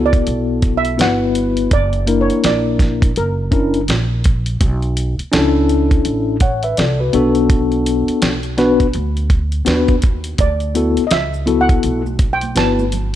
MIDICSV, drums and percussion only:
0, 0, Header, 1, 2, 480
1, 0, Start_track
1, 0, Tempo, 722892
1, 1139, Time_signature, 4, 2, 24, 8
1, 8734, End_track
2, 0, Start_track
2, 0, Title_t, "Drums"
2, 86, Note_on_c, 9, 36, 82
2, 89, Note_on_c, 9, 42, 55
2, 152, Note_off_c, 9, 36, 0
2, 155, Note_off_c, 9, 42, 0
2, 177, Note_on_c, 9, 42, 68
2, 244, Note_off_c, 9, 42, 0
2, 414, Note_on_c, 9, 42, 61
2, 415, Note_on_c, 9, 36, 94
2, 480, Note_off_c, 9, 42, 0
2, 482, Note_off_c, 9, 36, 0
2, 562, Note_on_c, 9, 42, 48
2, 629, Note_off_c, 9, 42, 0
2, 658, Note_on_c, 9, 42, 76
2, 669, Note_on_c, 9, 38, 101
2, 724, Note_off_c, 9, 42, 0
2, 736, Note_off_c, 9, 38, 0
2, 897, Note_on_c, 9, 42, 69
2, 964, Note_off_c, 9, 42, 0
2, 1041, Note_on_c, 9, 42, 47
2, 1107, Note_off_c, 9, 42, 0
2, 1137, Note_on_c, 9, 42, 85
2, 1138, Note_on_c, 9, 36, 101
2, 1203, Note_off_c, 9, 42, 0
2, 1204, Note_off_c, 9, 36, 0
2, 1280, Note_on_c, 9, 42, 29
2, 1347, Note_off_c, 9, 42, 0
2, 1377, Note_on_c, 9, 42, 79
2, 1443, Note_off_c, 9, 42, 0
2, 1526, Note_on_c, 9, 42, 44
2, 1592, Note_off_c, 9, 42, 0
2, 1618, Note_on_c, 9, 42, 80
2, 1622, Note_on_c, 9, 38, 99
2, 1684, Note_off_c, 9, 42, 0
2, 1688, Note_off_c, 9, 38, 0
2, 1855, Note_on_c, 9, 36, 74
2, 1859, Note_on_c, 9, 42, 53
2, 1862, Note_on_c, 9, 38, 27
2, 1921, Note_off_c, 9, 36, 0
2, 1925, Note_off_c, 9, 42, 0
2, 1929, Note_off_c, 9, 38, 0
2, 2006, Note_on_c, 9, 36, 85
2, 2010, Note_on_c, 9, 42, 53
2, 2073, Note_off_c, 9, 36, 0
2, 2076, Note_off_c, 9, 42, 0
2, 2099, Note_on_c, 9, 42, 63
2, 2165, Note_off_c, 9, 42, 0
2, 2336, Note_on_c, 9, 36, 94
2, 2336, Note_on_c, 9, 42, 65
2, 2402, Note_off_c, 9, 36, 0
2, 2402, Note_off_c, 9, 42, 0
2, 2482, Note_on_c, 9, 42, 43
2, 2549, Note_off_c, 9, 42, 0
2, 2577, Note_on_c, 9, 42, 74
2, 2588, Note_on_c, 9, 38, 103
2, 2644, Note_off_c, 9, 42, 0
2, 2655, Note_off_c, 9, 38, 0
2, 2817, Note_on_c, 9, 42, 65
2, 2825, Note_on_c, 9, 36, 78
2, 2883, Note_off_c, 9, 42, 0
2, 2892, Note_off_c, 9, 36, 0
2, 2962, Note_on_c, 9, 42, 53
2, 3028, Note_off_c, 9, 42, 0
2, 3059, Note_on_c, 9, 36, 95
2, 3059, Note_on_c, 9, 42, 95
2, 3125, Note_off_c, 9, 42, 0
2, 3126, Note_off_c, 9, 36, 0
2, 3203, Note_on_c, 9, 42, 28
2, 3270, Note_off_c, 9, 42, 0
2, 3299, Note_on_c, 9, 42, 87
2, 3366, Note_off_c, 9, 42, 0
2, 3448, Note_on_c, 9, 42, 44
2, 3515, Note_off_c, 9, 42, 0
2, 3537, Note_on_c, 9, 42, 78
2, 3541, Note_on_c, 9, 38, 120
2, 3604, Note_off_c, 9, 42, 0
2, 3608, Note_off_c, 9, 38, 0
2, 3781, Note_on_c, 9, 42, 53
2, 3847, Note_off_c, 9, 42, 0
2, 3925, Note_on_c, 9, 36, 84
2, 3925, Note_on_c, 9, 42, 48
2, 3991, Note_off_c, 9, 36, 0
2, 3992, Note_off_c, 9, 42, 0
2, 4017, Note_on_c, 9, 42, 74
2, 4083, Note_off_c, 9, 42, 0
2, 4251, Note_on_c, 9, 42, 67
2, 4254, Note_on_c, 9, 36, 82
2, 4318, Note_off_c, 9, 42, 0
2, 4321, Note_off_c, 9, 36, 0
2, 4400, Note_on_c, 9, 42, 45
2, 4467, Note_off_c, 9, 42, 0
2, 4498, Note_on_c, 9, 42, 77
2, 4509, Note_on_c, 9, 38, 92
2, 4564, Note_off_c, 9, 42, 0
2, 4575, Note_off_c, 9, 38, 0
2, 4736, Note_on_c, 9, 42, 64
2, 4802, Note_off_c, 9, 42, 0
2, 4880, Note_on_c, 9, 42, 47
2, 4946, Note_off_c, 9, 42, 0
2, 4978, Note_on_c, 9, 36, 102
2, 4978, Note_on_c, 9, 42, 87
2, 5044, Note_off_c, 9, 36, 0
2, 5044, Note_off_c, 9, 42, 0
2, 5124, Note_on_c, 9, 42, 26
2, 5190, Note_off_c, 9, 42, 0
2, 5221, Note_on_c, 9, 42, 79
2, 5288, Note_off_c, 9, 42, 0
2, 5367, Note_on_c, 9, 42, 46
2, 5433, Note_off_c, 9, 42, 0
2, 5456, Note_on_c, 9, 42, 80
2, 5460, Note_on_c, 9, 38, 113
2, 5523, Note_off_c, 9, 42, 0
2, 5527, Note_off_c, 9, 38, 0
2, 5598, Note_on_c, 9, 42, 33
2, 5665, Note_off_c, 9, 42, 0
2, 5696, Note_on_c, 9, 42, 50
2, 5699, Note_on_c, 9, 38, 29
2, 5762, Note_off_c, 9, 42, 0
2, 5766, Note_off_c, 9, 38, 0
2, 5843, Note_on_c, 9, 36, 86
2, 5844, Note_on_c, 9, 42, 55
2, 5910, Note_off_c, 9, 36, 0
2, 5911, Note_off_c, 9, 42, 0
2, 5933, Note_on_c, 9, 42, 63
2, 5999, Note_off_c, 9, 42, 0
2, 6087, Note_on_c, 9, 42, 31
2, 6154, Note_off_c, 9, 42, 0
2, 6174, Note_on_c, 9, 36, 84
2, 6175, Note_on_c, 9, 42, 61
2, 6241, Note_off_c, 9, 36, 0
2, 6241, Note_off_c, 9, 42, 0
2, 6321, Note_on_c, 9, 42, 44
2, 6388, Note_off_c, 9, 42, 0
2, 6414, Note_on_c, 9, 42, 78
2, 6426, Note_on_c, 9, 38, 90
2, 6481, Note_off_c, 9, 42, 0
2, 6492, Note_off_c, 9, 38, 0
2, 6562, Note_on_c, 9, 42, 33
2, 6564, Note_on_c, 9, 36, 75
2, 6628, Note_off_c, 9, 42, 0
2, 6631, Note_off_c, 9, 36, 0
2, 6654, Note_on_c, 9, 42, 70
2, 6663, Note_on_c, 9, 36, 80
2, 6720, Note_off_c, 9, 42, 0
2, 6730, Note_off_c, 9, 36, 0
2, 6799, Note_on_c, 9, 42, 56
2, 6865, Note_off_c, 9, 42, 0
2, 6895, Note_on_c, 9, 42, 93
2, 6897, Note_on_c, 9, 36, 103
2, 6900, Note_on_c, 9, 82, 53
2, 6961, Note_off_c, 9, 42, 0
2, 6964, Note_off_c, 9, 36, 0
2, 6967, Note_off_c, 9, 82, 0
2, 7040, Note_on_c, 9, 42, 27
2, 7048, Note_on_c, 9, 82, 37
2, 7106, Note_off_c, 9, 42, 0
2, 7114, Note_off_c, 9, 82, 0
2, 7139, Note_on_c, 9, 42, 78
2, 7142, Note_on_c, 9, 82, 49
2, 7206, Note_off_c, 9, 42, 0
2, 7209, Note_off_c, 9, 82, 0
2, 7284, Note_on_c, 9, 42, 48
2, 7285, Note_on_c, 9, 82, 46
2, 7350, Note_off_c, 9, 42, 0
2, 7352, Note_off_c, 9, 82, 0
2, 7375, Note_on_c, 9, 42, 79
2, 7379, Note_on_c, 9, 38, 97
2, 7381, Note_on_c, 9, 64, 47
2, 7381, Note_on_c, 9, 82, 45
2, 7441, Note_off_c, 9, 42, 0
2, 7445, Note_off_c, 9, 38, 0
2, 7448, Note_off_c, 9, 64, 0
2, 7448, Note_off_c, 9, 82, 0
2, 7527, Note_on_c, 9, 82, 48
2, 7594, Note_off_c, 9, 82, 0
2, 7617, Note_on_c, 9, 42, 51
2, 7619, Note_on_c, 9, 64, 55
2, 7619, Note_on_c, 9, 82, 41
2, 7683, Note_off_c, 9, 42, 0
2, 7685, Note_off_c, 9, 64, 0
2, 7685, Note_off_c, 9, 82, 0
2, 7764, Note_on_c, 9, 36, 84
2, 7764, Note_on_c, 9, 42, 50
2, 7772, Note_on_c, 9, 82, 40
2, 7830, Note_off_c, 9, 36, 0
2, 7831, Note_off_c, 9, 42, 0
2, 7838, Note_off_c, 9, 82, 0
2, 7855, Note_on_c, 9, 42, 70
2, 7865, Note_on_c, 9, 63, 42
2, 7865, Note_on_c, 9, 82, 58
2, 7922, Note_off_c, 9, 42, 0
2, 7932, Note_off_c, 9, 63, 0
2, 7932, Note_off_c, 9, 82, 0
2, 8009, Note_on_c, 9, 63, 57
2, 8009, Note_on_c, 9, 82, 40
2, 8075, Note_off_c, 9, 63, 0
2, 8075, Note_off_c, 9, 82, 0
2, 8094, Note_on_c, 9, 42, 64
2, 8095, Note_on_c, 9, 36, 89
2, 8102, Note_on_c, 9, 82, 49
2, 8160, Note_off_c, 9, 42, 0
2, 8162, Note_off_c, 9, 36, 0
2, 8168, Note_off_c, 9, 82, 0
2, 8243, Note_on_c, 9, 42, 45
2, 8254, Note_on_c, 9, 63, 59
2, 8254, Note_on_c, 9, 82, 42
2, 8309, Note_off_c, 9, 42, 0
2, 8320, Note_off_c, 9, 63, 0
2, 8320, Note_off_c, 9, 82, 0
2, 8338, Note_on_c, 9, 42, 76
2, 8349, Note_on_c, 9, 38, 92
2, 8350, Note_on_c, 9, 82, 62
2, 8404, Note_off_c, 9, 42, 0
2, 8415, Note_off_c, 9, 38, 0
2, 8417, Note_off_c, 9, 82, 0
2, 8492, Note_on_c, 9, 63, 71
2, 8492, Note_on_c, 9, 82, 51
2, 8558, Note_off_c, 9, 63, 0
2, 8558, Note_off_c, 9, 82, 0
2, 8579, Note_on_c, 9, 42, 66
2, 8586, Note_on_c, 9, 64, 69
2, 8586, Note_on_c, 9, 82, 54
2, 8646, Note_off_c, 9, 42, 0
2, 8653, Note_off_c, 9, 64, 0
2, 8653, Note_off_c, 9, 82, 0
2, 8734, End_track
0, 0, End_of_file